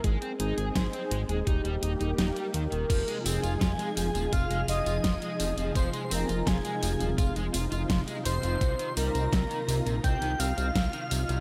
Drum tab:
CC |----------------|x---------------|----------------|----------------|
HH |xxxxxxxxxxxxxxxx|xxoxxxoxxxoxxxox|xxoxxxoxxxoxxxox|xxoxxxoxxxoxxxox|
TB |----------------|xxxxxxxxxxxxxxxx|xxxxxxxxxxxxxxxx|xxxxxxxxxxxxxxxx|
SD |----o-------o---|----o-------o---|----o-------o---|----o-------o---|
BD |o---o---o-------|o---o---o---o---|o---o---o---o---|o---o---o---o---|